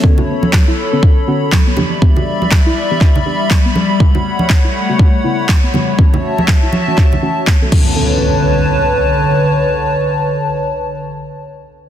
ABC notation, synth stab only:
X:1
M:4/4
L:1/16
Q:"Swing 16ths" 1/4=121
K:Bm
V:1 name="Synth stab"
[D,B,CA]6- [D,B,CA] [D,B,CA]3 [D,B,CF]4 [E,B,DG]2 | [E,B,DG]6- [E,B,DG] [E,B,DG]3 [E,B,DG]6 | [C,G,B,F]6- [C,G,B,F] [C,G,B,F]3 [C,G,B,E]4 [C,G,B,F]2 | [E,A,CF]6- [E,A,CF] [E,A,CF]3 [E,A,CF]2 z [E,A,CA] D,2- |
D,16- | D,16 |]